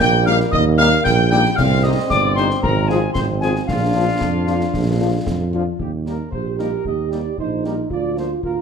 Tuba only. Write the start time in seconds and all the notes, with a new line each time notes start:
0.00 A#1
0.52 D#2
1.05 A#1
1.58 C2
2.10 G1
2.63 G#1
3.16 G#1
3.69 A#1
4.22 F2
4.74 A#1
5.26 F2
5.80 D#2
6.33 A#1
6.86 D#2
7.39 A#1
7.92 D2
8.44 D2